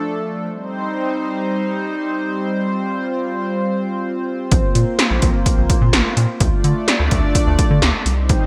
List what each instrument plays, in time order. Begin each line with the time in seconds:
Already playing: analog synth pad F3 A3 D4 A4
0.50 analog synth pad G3 C4 D#4 C5
2.63 analog synth pad F4
4.51 analog synth bass A#1, analog synth pad A#3, kick, closed hi-hat
4.75 analog synth bass A#2, closed hi-hat
4.99 snare, closed hi-hat
5.11 analog synth bass A#1
5.22 analog synth bass A#1, kick, closed hi-hat
5.46 kick, closed hi-hat
5.58 analog synth bass A#1
5.70 kick, closed hi-hat
5.81 analog synth bass A#2
5.93 analog synth bass A#1, snare, closed hi-hat
6.17 analog synth bass A#2, closed hi-hat
6.40 analog synth bass D2, analog synth pad A3 D4 D5, kick, closed hi-hat
6.64 analog synth bass D3, closed hi-hat
6.88 snare, closed hi-hat
7.00 analog synth bass D2
7.11 analog synth bass D2, kick, closed hi-hat
7.35 kick, closed hi-hat
7.47 analog synth bass D2
7.59 kick, closed hi-hat
7.71 analog synth bass D3
7.82 analog synth bass D2, snare, closed hi-hat
8.06 analog synth bass C2, analog synth pad G3 C4 D#4 C5, closed hi-hat
8.29 kick, closed hi-hat